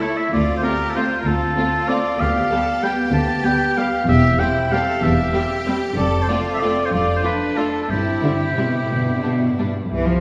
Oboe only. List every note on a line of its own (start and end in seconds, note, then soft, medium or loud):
0.02 0.19 C#5 medium
0.17 0.32 E5 medium
0.33 0.55 D5 medium
0.57 0.63 C5 medium
0.63 0.91 A#4 medium
0.90 0.97 A4 medium
0.96 1.19 C5 medium
1.20 1.28 A#4 medium
1.27 1.90 A4 medium
1.89 2.22 D5 medium
2.20 2.85 F5 medium
2.83 3.13 G5 medium
3.13 3.46 A5 medium
3.45 3.79 G5 medium
3.77 4.08 F5 medium
4.09 4.41 E5 medium
4.40 4.73 G5 medium
4.72 5.05 F5 medium
5.03 5.67 E5 medium
5.97 6.24 D5 medium
6.22 6.28 C5 medium
6.28 6.40 D5 medium
6.54 6.62 E5 medium
6.60 6.87 D5 medium
6.85 6.93 C5 medium
6.92 7.15 D5 medium
7.16 7.20 C5 medium
7.25 7.59 B4 medium
7.57 7.82 A4 medium
7.83 7.91 A4 medium
7.90 9.58 G4 medium